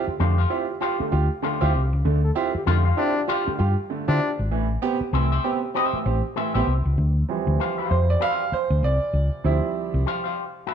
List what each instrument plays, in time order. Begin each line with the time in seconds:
0.07 upright piano F4 G4, muted fingered electric bass stroke
0.19 fingered electric bass F2, upright piano D3 A3, clean electric guitar G4 C5 F5
0.38 clean electric guitar G4 C5 F5
0.50 upright piano C4 E4 F4 G4
0.69 upright piano F4 G4
0.81 upright piano F4 G4, clean electric guitar G4 C5 F5
0.99 upright piano D3 A3, muted fingered electric bass stroke
1.12 fingered electric bass D2, upright piano F4 G4
1.42 upright piano D3 A3, clean electric guitar G4 C5 F5
1.61 fingered electric bass D2, upright piano C4 E4 F4 G4, clean electric guitar G4 C5 F5
1.74 fingered electric bass C2, upright piano F4 G4
1.93 fingered electric bass C#2
2.05 fingered electric bass D2, upright piano D3 A3
2.24 trombone A4
2.35 upright piano C4 E4 F4 G4
2.54 upright piano F4 G4, trombone G4, muted fingered electric bass stroke
2.66 fingered electric bass F2, upright piano D3 A3, trombone F4, clean electric guitar G4 C5 F5
2.85 clean electric guitar G4 C5 F5
2.97 upright piano C4 E4 F4 G4, trombone D4
3.16 upright piano F4 G4
3.28 upright piano F4 G4, clean electric guitar G4 C5 F5
3.46 upright piano D3 A3, trombone G4, muted fingered electric bass stroke
3.59 fingered electric bass G2, upright piano F4 G4, trombone F4
3.90 upright piano D3 A3
4.08 fingered electric bass D3, upright piano C4 E4 F4 G4, trombone D4
4.21 upright piano F4 G4
4.39 fingered electric bass G#1
4.51 fingered electric bass A1, upright piano A2 E3
4.82 upright piano B3 C4 G4
5.01 upright piano C4 G4, muted fingered electric bass stroke
5.13 fingered electric bass C2, upright piano A2 E3, clean electric guitar G4 C5 E5
5.32 clean electric guitar G4 C5 E5
5.44 upright piano B3 C4 G4
5.62 upright piano C4 G4
5.74 upright piano C4 G4, clean electric guitar G4 C5 E5
5.93 upright piano A2 E3, muted fingered electric bass stroke
6.05 fingered electric bass A1, upright piano C4 G4
6.36 upright piano A2 E3, clean electric guitar G4 C5 E5
6.54 fingered electric bass A1, upright piano B3 C4 G4, clean electric guitar G4 C5 E5
6.67 fingered electric bass C2, upright piano C4 G4
6.85 fingered electric bass C#2
6.98 fingered electric bass D2
7.29 upright piano E3 F3 G3 C4
7.47 fingered electric bass D2
7.59 clean electric guitar G4 C5 F5
7.78 clean electric guitar G4 C5 F5
7.91 fingered electric bass F2, upright piano C5
8.10 upright piano D5
8.20 clean electric guitar G4 C5 F5, upright piano F5
8.52 upright piano C5, muted fingered electric bass stroke
8.70 fingered electric bass D2
8.83 fingered electric bass C2, upright piano D5
9.13 fingered electric bass C#2
9.44 fingered electric bass D2, upright piano F3 G3 C4 E4
9.94 fingered electric bass C2
10.06 clean electric guitar G4 C5 F5
10.24 clean electric guitar G4 C5 F5
10.67 clean electric guitar G4 C5 F5